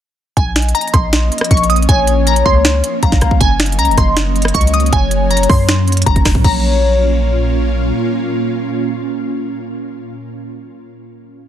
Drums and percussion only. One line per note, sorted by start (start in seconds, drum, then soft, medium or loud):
0.37 kick loud
0.37 closed hi-hat medium
0.56 finger snap medium
0.56 snare loud
0.56 closed hi-hat medium
0.62 closed hi-hat medium
0.69 closed hi-hat medium
0.75 closed hi-hat medium
0.81 closed hi-hat soft
0.88 closed hi-hat soft
0.94 kick loud
0.94 cross-stick medium
0.94 closed hi-hat medium
1.13 finger snap medium
1.13 snare loud
1.13 closed hi-hat medium
1.32 closed hi-hat soft
1.38 cross-stick loud
1.38 closed hi-hat medium
1.44 closed hi-hat medium
1.51 kick medium
1.51 closed hi-hat medium
1.57 closed hi-hat medium
1.63 closed hi-hat medium
1.70 closed hi-hat medium
1.76 closed hi-hat medium
1.82 closed hi-hat soft
1.89 kick loud
1.89 closed hi-hat medium
2.07 closed hi-hat medium
2.27 closed hi-hat medium
2.36 closed hi-hat medium
2.46 kick medium
2.65 finger snap medium
2.65 snare loud
2.65 closed hi-hat medium
2.84 closed hi-hat medium
3.03 kick medium
3.03 closed hi-hat medium
3.12 kick loud
3.12 snare medium
3.21 kick loud
3.21 cross-stick loud
3.21 closed hi-hat medium
3.31 kick loud
3.41 kick loud
3.41 closed hi-hat medium
3.60 finger snap medium
3.60 snare loud
3.60 closed hi-hat medium
3.66 closed hi-hat medium
3.72 closed hi-hat medium
3.79 closed hi-hat medium
3.85 closed hi-hat soft
3.91 closed hi-hat soft
3.98 kick medium
3.98 cross-stick medium
3.98 closed hi-hat medium
4.17 finger snap medium
4.17 snare loud
4.17 closed hi-hat medium
4.36 closed hi-hat soft
4.42 cross-stick loud
4.42 closed hi-hat medium
4.48 closed hi-hat medium
4.55 kick loud
4.55 closed hi-hat medium
4.61 closed hi-hat medium
4.67 closed hi-hat medium
4.74 closed hi-hat medium
4.80 closed hi-hat medium
4.86 closed hi-hat soft
4.93 kick loud
4.93 closed hi-hat medium
5.11 closed hi-hat medium
5.31 closed hi-hat soft
5.37 closed hi-hat medium
5.43 closed hi-hat medium
5.49 kick medium
5.49 cross-stick medium
5.49 open hi-hat medium
5.69 finger snap medium
5.69 snare loud
5.69 closed hi-hat medium
5.88 closed hi-hat soft
5.92 closed hi-hat medium
5.97 closed hi-hat medium
6.02 closed hi-hat medium
6.06 kick loud
6.06 closed hi-hat medium
6.16 kick loud
6.16 closed hi-hat medium
6.25 finger snap medium
6.25 kick loud
6.25 cross-stick medium
6.25 snare loud
6.25 open hi-hat medium
6.35 kick loud
6.44 kick loud
6.44 crash medium